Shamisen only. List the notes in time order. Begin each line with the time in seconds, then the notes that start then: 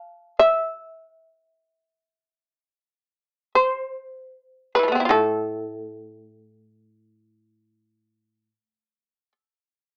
Already playing: F5
0.39 E5
3.55 C5
4.75 C3 E3 B4
4.83 F3
4.88 A3
4.92 B3 C4
5.00 E4
5.05 F4
5.11 A4